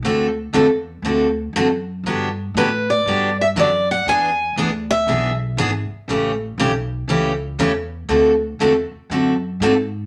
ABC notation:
X:1
M:4/4
L:1/8
Q:"Swing" 1/4=119
K:Dmix
V:1 name="Steel-string acoustic guitar"
z8 | z2 B d2 e d f | ^g2 z e2 z3 | z8 |
z8 |]
V:2 name="Steel-string acoustic guitar"
[D,A,CFA] z [D,A,CFA] z [D,A,CFA] z [D,A,CFA] z | [D,F,B,DG] z [D,F,B,DG] z [D,F,B,DG] z [D,F,B,DG] z | [E,B,D^G] z [E,B,DG] z [E,B,DG] z [E,B,DG] z | [^C,E,A,^CG] z [C,E,A,CG] z [C,E,A,CG] z [C,E,A,CG] z |
[D,A,CFA] z [D,A,CFA] z [D,A,CFA] z [D,A,CFA] z |]
V:3 name="Upright bass" clef=bass
D,,2 E,,2 D,,2 F,,2 | G,,2 A,,2 G,,2 F,,2 | E,,2 D,,2 B,,,2 ^G,,, z | A,,,2 B,,,2 ^C,,2 E,,2 |
D,,2 E,, z F,,2 _A,,2 |]